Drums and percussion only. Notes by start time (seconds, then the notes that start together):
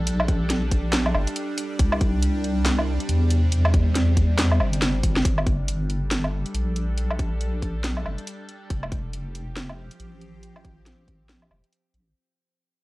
0.07 closed hi-hat
0.20 low woodblock
0.28 kick, closed hi-hat
0.50 snare, closed hi-hat
0.71 kick, closed hi-hat
0.93 snare, clap, closed hi-hat
1.06 low woodblock
1.15 low woodblock
1.27 closed hi-hat
1.36 closed hi-hat
1.58 open hi-hat
1.79 kick, closed hi-hat
1.92 low woodblock
2.01 kick, closed hi-hat
2.23 closed hi-hat
2.44 closed hi-hat
2.66 snare, clap, closed hi-hat
2.79 low woodblock
3.00 closed hi-hat
3.09 closed hi-hat
3.30 open hi-hat
3.52 closed hi-hat
3.65 low woodblock
3.74 kick, closed hi-hat
3.95 snare, closed hi-hat
4.17 kick, closed hi-hat
4.39 snare, clap, closed hi-hat
4.52 low woodblock
4.60 low woodblock
4.73 closed hi-hat
4.82 snare, closed hi-hat
5.03 kick, open hi-hat
5.16 snare
5.25 kick, closed hi-hat
5.38 low woodblock
5.47 kick, closed hi-hat
5.68 closed hi-hat
5.90 closed hi-hat
6.11 snare, closed hi-hat
6.24 low woodblock
6.46 closed hi-hat
6.55 closed hi-hat
6.76 closed hi-hat
6.98 closed hi-hat
7.11 low woodblock
7.19 kick, closed hi-hat
7.41 closed hi-hat
7.62 kick, closed hi-hat
7.84 snare, closed hi-hat
7.97 low woodblock
8.06 low woodblock
8.18 closed hi-hat
8.27 closed hi-hat
8.49 closed hi-hat
8.70 kick, closed hi-hat
8.83 low woodblock
8.92 kick, closed hi-hat
9.13 closed hi-hat
9.35 closed hi-hat
9.57 snare, closed hi-hat
9.69 low woodblock
9.91 closed hi-hat
10.00 closed hi-hat
10.21 closed hi-hat
10.43 closed hi-hat
10.56 low woodblock
10.65 kick, closed hi-hat
10.86 snare, closed hi-hat
11.08 kick, closed hi-hat
11.29 snare, closed hi-hat
11.42 low woodblock
11.51 low woodblock
11.64 closed hi-hat
11.73 closed hi-hat
11.94 closed hi-hat